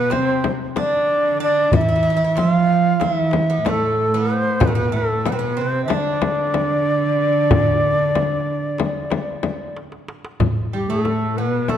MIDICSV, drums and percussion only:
0, 0, Header, 1, 3, 480
1, 0, Start_track
1, 0, Tempo, 643087
1, 1289, Time_signature, 9, 3, 24, 8
1, 8788, End_track
2, 0, Start_track
2, 0, Title_t, "Darbuka"
2, 76, Note_on_c, 9, 63, 72
2, 150, Note_off_c, 9, 63, 0
2, 329, Note_on_c, 9, 63, 68
2, 404, Note_off_c, 9, 63, 0
2, 573, Note_on_c, 9, 63, 77
2, 648, Note_off_c, 9, 63, 0
2, 1281, Note_on_c, 9, 64, 75
2, 1356, Note_off_c, 9, 64, 0
2, 1759, Note_on_c, 9, 63, 67
2, 1833, Note_off_c, 9, 63, 0
2, 2238, Note_on_c, 9, 63, 67
2, 2313, Note_off_c, 9, 63, 0
2, 2472, Note_on_c, 9, 63, 67
2, 2547, Note_off_c, 9, 63, 0
2, 2724, Note_on_c, 9, 63, 69
2, 2798, Note_off_c, 9, 63, 0
2, 3441, Note_on_c, 9, 64, 90
2, 3515, Note_off_c, 9, 64, 0
2, 3930, Note_on_c, 9, 63, 71
2, 4004, Note_off_c, 9, 63, 0
2, 4401, Note_on_c, 9, 63, 62
2, 4476, Note_off_c, 9, 63, 0
2, 4641, Note_on_c, 9, 63, 69
2, 4716, Note_off_c, 9, 63, 0
2, 4881, Note_on_c, 9, 63, 70
2, 4955, Note_off_c, 9, 63, 0
2, 5603, Note_on_c, 9, 64, 91
2, 5678, Note_off_c, 9, 64, 0
2, 5847, Note_on_c, 9, 62, 26
2, 5922, Note_off_c, 9, 62, 0
2, 6088, Note_on_c, 9, 63, 65
2, 6163, Note_off_c, 9, 63, 0
2, 6323, Note_on_c, 9, 62, 25
2, 6397, Note_off_c, 9, 62, 0
2, 6442, Note_on_c, 9, 62, 27
2, 6517, Note_off_c, 9, 62, 0
2, 6556, Note_on_c, 9, 63, 61
2, 6631, Note_off_c, 9, 63, 0
2, 6795, Note_on_c, 9, 63, 61
2, 6870, Note_off_c, 9, 63, 0
2, 7040, Note_on_c, 9, 63, 60
2, 7114, Note_off_c, 9, 63, 0
2, 7289, Note_on_c, 9, 63, 59
2, 7363, Note_off_c, 9, 63, 0
2, 7405, Note_on_c, 9, 62, 60
2, 7479, Note_off_c, 9, 62, 0
2, 7527, Note_on_c, 9, 63, 74
2, 7602, Note_off_c, 9, 63, 0
2, 7647, Note_on_c, 9, 62, 90
2, 7722, Note_off_c, 9, 62, 0
2, 7762, Note_on_c, 9, 64, 78
2, 7836, Note_off_c, 9, 64, 0
2, 8250, Note_on_c, 9, 63, 66
2, 8325, Note_off_c, 9, 63, 0
2, 8730, Note_on_c, 9, 63, 64
2, 8788, Note_off_c, 9, 63, 0
2, 8788, End_track
3, 0, Start_track
3, 0, Title_t, "Frame drum"
3, 92, Note_on_c, 9, 64, 62
3, 167, Note_off_c, 9, 64, 0
3, 330, Note_on_c, 9, 64, 70
3, 405, Note_off_c, 9, 64, 0
3, 567, Note_on_c, 9, 64, 64
3, 642, Note_off_c, 9, 64, 0
3, 1291, Note_on_c, 9, 64, 86
3, 1366, Note_off_c, 9, 64, 0
3, 1775, Note_on_c, 9, 64, 67
3, 1850, Note_off_c, 9, 64, 0
3, 2248, Note_on_c, 9, 64, 73
3, 2323, Note_off_c, 9, 64, 0
3, 2487, Note_on_c, 9, 64, 71
3, 2561, Note_off_c, 9, 64, 0
3, 2730, Note_on_c, 9, 64, 82
3, 2805, Note_off_c, 9, 64, 0
3, 3440, Note_on_c, 9, 64, 98
3, 3515, Note_off_c, 9, 64, 0
3, 3923, Note_on_c, 9, 64, 77
3, 3997, Note_off_c, 9, 64, 0
3, 4405, Note_on_c, 9, 64, 81
3, 4480, Note_off_c, 9, 64, 0
3, 4640, Note_on_c, 9, 64, 86
3, 4715, Note_off_c, 9, 64, 0
3, 4883, Note_on_c, 9, 64, 78
3, 4958, Note_off_c, 9, 64, 0
3, 5603, Note_on_c, 9, 64, 97
3, 5678, Note_off_c, 9, 64, 0
3, 6086, Note_on_c, 9, 64, 77
3, 6161, Note_off_c, 9, 64, 0
3, 6565, Note_on_c, 9, 64, 77
3, 6640, Note_off_c, 9, 64, 0
3, 6804, Note_on_c, 9, 64, 76
3, 6878, Note_off_c, 9, 64, 0
3, 7039, Note_on_c, 9, 64, 77
3, 7114, Note_off_c, 9, 64, 0
3, 7764, Note_on_c, 9, 64, 92
3, 7838, Note_off_c, 9, 64, 0
3, 8247, Note_on_c, 9, 64, 49
3, 8322, Note_off_c, 9, 64, 0
3, 8721, Note_on_c, 9, 64, 64
3, 8788, Note_off_c, 9, 64, 0
3, 8788, End_track
0, 0, End_of_file